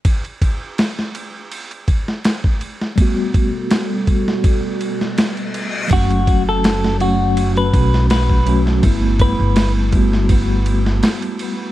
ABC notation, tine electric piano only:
X:1
M:4/4
L:1/8
Q:"Swing 16ths" 1/4=82
K:F#phr
V:1 name="Tine electric piano"
z8 | [G,A,B,F]8 | [F,A,CF]3 [F,A,CF]4 [F,A,CF] | [G,A,B,E] z2 [G,A,B,F]4- [G,A,B,F] |]